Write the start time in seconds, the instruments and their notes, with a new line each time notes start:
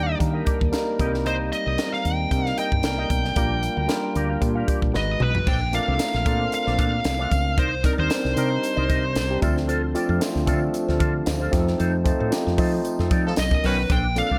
Already playing: fretless electric bass D#2, tine electric piano G3 A#3 D4 D#4 A#4, lead electric guitar G5
0.07 clean electric guitar G4 A#4 D#5
0.19 fretless electric bass D#3, tine electric piano G3 A#3 D4 D#4 A#4, muted clean electric guitar stroke, kick, closed hi-hat
0.33 clean electric guitar G4 A#4 D#5
0.45 clean electric guitar G4 A#4 D5, kick, closed hi-hat
0.60 fretless electric bass D#2, muted clean electric guitar stroke, kick
0.72 tine electric piano G3 A#3 D4 D#4 A#4, snare, closed hi-hat
0.87 muted clean electric guitar stroke
0.99 fretless electric bass C2, tine electric piano G3 A#3 C4 D#4 A4, clean electric guitar G4 A#4 D#5, kick, closed hi-hat
1.07 tine electric piano A#4
1.13 muted clean electric guitar stroke, snare
1.25 clean electric guitar G4 A#4 D#5, lead electric guitar C5, closed hi-hat
1.53 lead electric guitar D#5, closed hi-hat
1.66 fretless electric bass C2, clean electric guitar G4 A#4 D#5
1.78 tine electric piano G3 A#3 C4 D#4 A#4, muted clean electric guitar stroke, snare, closed hi-hat
1.93 lead electric guitar F5, muted clean electric guitar stroke, snare
2.05 fretless electric bass D#2, lead electric guitar G5, closed hi-hat
2.20 muted clean electric guitar stroke
2.30 fretless electric bass C3, tine electric piano G3 A#3 C4 D4 A#4, kick, closed hi-hat
2.38 tine electric piano D#4
2.46 muted clean electric guitar stroke, snare
2.58 clean electric guitar G4 A#4 D#5, lead electric guitar G5, closed hi-hat
2.72 fretless electric bass G2, muted clean electric guitar stroke, kick
2.83 fretless electric bass C2, tine electric piano G3 A#3 C4 D#4 A#4, muted clean electric guitar stroke, snare, closed hi-hat
2.98 clean electric guitar G4 A#4 D#5
3.10 fretless electric bass B1, muted clean electric guitar stroke, kick, closed hi-hat
3.24 muted clean electric guitar stroke, snare
3.35 fretless electric bass A#1, tine electric piano G3 A#3 D4 F4 A#4, clean electric guitar G4 A#4 D5, kick, closed hi-hat
3.62 muted clean electric guitar stroke, closed hi-hat
3.76 fretless electric bass D2, clean electric guitar G4 A#4 F5
3.88 tine electric piano G3 A#3 D4 F4 A#4, muted clean electric guitar stroke, snare, closed hi-hat
4.03 muted clean electric guitar stroke
4.15 fretless electric bass D2, clean electric guitar G4 A#4 D5, closed hi-hat
4.30 clean electric guitar G4 A#4 F5
4.41 fretless electric bass A#2, tine electric piano G3 A#3 D4 F4 G4, muted clean electric guitar stroke, kick, closed hi-hat
4.55 clean electric guitar G4 A#4 F5
4.68 clean electric guitar G4 A#4 D5, kick, closed hi-hat
4.82 fretless electric bass A#1, kick
4.93 fretless electric bass G#1, tine electric piano G#3 B3 D#4 F#4 B4, lead electric guitar D#5, snare
5.08 muted clean electric guitar stroke
5.20 fretless electric bass B1, clean electric guitar F#4 B4 D#5, lead electric guitar B4, mid tom
5.35 muted clean electric guitar stroke, floor tom
5.46 fretless electric bass A#1, clean electric guitar D4 A4 C5, lead electric guitar G5, kick, crash, tambourine
5.61 muted clean electric guitar stroke
5.72 tine electric piano A3 C4 D4 F4 A#4, clean electric guitar D4 A4 D5, lead electric guitar F5, closed hi-hat, tambourine
5.87 fretless electric bass C2, clean electric guitar D4 A4 C5
5.98 tine electric piano A3 C4 D4 F4 A#4, snare, closed hi-hat, tambourine
6.14 fretless electric bass A#1, muted clean electric guitar stroke, snare
6.25 fretless electric bass A#2, tine electric piano C4 D4 F4 A4 A#4, clean electric guitar D4 A4 C5, kick, closed hi-hat, tambourine
6.40 muted clean electric guitar stroke
6.52 lead electric guitar F5, muted clean electric guitar stroke, closed hi-hat, tambourine
6.66 fretless electric bass A#1, clean electric guitar D4 A4 C5, snare
6.78 fretless electric bass A#2, clean electric guitar D4 A4 C5, lead electric guitar F5, kick, closed hi-hat
6.92 muted clean electric guitar stroke
7.04 fretless electric bass C2, muted clean electric guitar stroke, snare, closed hi-hat, tambourine
7.19 tine electric piano A3 C4 D4 F4 A4, clean electric guitar D4 A4 C5
7.31 fretless electric bass C#2, muted clean electric guitar stroke, kick, closed hi-hat, tambourine
7.45 muted clean electric guitar stroke
7.57 fretless electric bass C2, clean electric guitar D#4 A#4 D5, lead electric guitar C5, kick, closed hi-hat
7.71 muted clean electric guitar stroke
7.83 tine electric piano G3 C4 D4 D#4 A#4, clean electric guitar D#4 A#4 D5, lead electric guitar A#4, kick, closed hi-hat, tambourine
7.97 fretless electric bass D#2, clean electric guitar D#4 A#4 D5, lead electric guitar C5
8.10 tine electric piano G3 C4 D4 D#4 A#4, snare, closed hi-hat, tambourine
8.24 fretless electric bass C2, muted clean electric guitar stroke, snare
8.36 fretless electric bass C3, tine electric piano G3 C4 D4 D#4 A#4, clean electric guitar D#4 A#4 D5, closed hi-hat, tambourine
8.50 muted clean electric guitar stroke
8.62 muted clean electric guitar stroke, closed hi-hat, tambourine
8.76 fretless electric bass C2, clean electric guitar D#4 A#4 D5
8.89 fretless electric bass C3, clean electric guitar D#4 A#4 D#5, kick, closed hi-hat, tambourine
9.03 muted clean electric guitar stroke
9.15 fretless electric bass C2, muted clean electric guitar stroke, snare, closed hi-hat, tambourine
9.30 tine electric piano G3 C4 D4 D#4 G4, muted clean electric guitar stroke
9.41 fretless electric bass D2, tine electric piano F3 A3 C4 D4 A4, clean electric guitar F4 A4 C5, kick, closed hi-hat, tambourine
9.56 muted clean electric guitar stroke, snare
9.68 clean electric guitar F4 A4 C5, closed hi-hat
9.82 muted clean electric guitar stroke
9.94 tine electric piano F3 A3 C4 D4 G4, clean electric guitar F4 A4 D5, closed hi-hat, tambourine
10.09 fretless electric bass F2, clean electric guitar F4 A4 C5
10.20 tine electric piano F3 A3 C4 D4 F4, snare, closed hi-hat, tambourine
10.35 fretless electric bass D2, muted clean electric guitar stroke, snare
10.46 fretless electric bass D3, tine electric piano F3 A3 C4 D4 A4, clean electric guitar F4 A4 C5, kick, closed hi-hat, tambourine
10.61 muted clean electric guitar stroke
10.74 muted clean electric guitar stroke, closed hi-hat, tambourine
10.88 fretless electric bass D2, clean electric guitar F4 A4 C5, snare
10.99 fretless electric bass D3, clean electric guitar F4 A4 C5, tine electric piano D5 A5, kick, closed hi-hat
11.14 muted clean electric guitar stroke
11.26 fretless electric bass D2, tine electric piano C5 F5, muted clean electric guitar stroke, snare, closed hi-hat, tambourine
11.40 clean electric guitar F4 A4 C5, tine electric piano G4 C5
11.51 fretless electric bass F2, tine electric piano F3 A3 C4 D#4 G4, muted clean electric guitar stroke, kick, snare, closed hi-hat, tambourine
11.59 tine electric piano A4
11.67 muted clean electric guitar stroke, snare
11.78 fretless electric bass F2, clean electric guitar D#4 A4 C5, closed hi-hat, tambourine
11.93 muted clean electric guitar stroke
12.04 tine electric piano F3 A3 C4 D#4 F4, clean electric guitar D#4 A4 C5, kick, closed hi-hat, tambourine
12.19 fretless electric bass A2, clean electric guitar D#4 A4 C5
12.31 tine electric piano F3 A3 C4 D#4 G4, snare, closed hi-hat, tambourine
12.46 fretless electric bass F2, muted clean electric guitar stroke, snare
12.57 tine electric piano F3 A3 C4 D#4 C5, fretless electric bass F3, clean electric guitar D#4 A4 C5, kick, open hi-hat, tambourine
12.73 muted clean electric guitar stroke
12.85 muted clean electric guitar stroke, closed hi-hat, tambourine
12.99 fretless electric bass F2, clean electric guitar D#4 A4 C5, snare
13.11 fretless electric bass F3, clean electric guitar D#4 A4 D5, kick, closed hi-hat, tambourine
13.25 horn section F3 D#4 A4, muted clean electric guitar stroke
13.36 fretless electric bass B1, lead electric guitar D#5, muted clean electric guitar stroke, snare, closed hi-hat, tambourine
13.51 tine electric piano F#3 B3 C#4 D#4 A#4, muted clean electric guitar stroke, kick
13.63 fretless electric bass B1, horn section D#3 C#4 F#4, clean electric guitar D#4 A#4 C#5, lead electric guitar B4, snare, open hi-hat, tambourine
13.78 muted clean electric guitar stroke
13.90 fretless electric bass A#1, clean electric guitar D4 A4 C5, lead electric guitar G5, kick, closed hi-hat, tambourine
14.05 muted clean electric guitar stroke
14.15 tine electric piano F3 A#3 C4 D4 A4, clean electric guitar D4 A4 D5, lead electric guitar F5, closed hi-hat, tambourine
14.30 fretless electric bass C2, clean electric guitar D4 A4 C5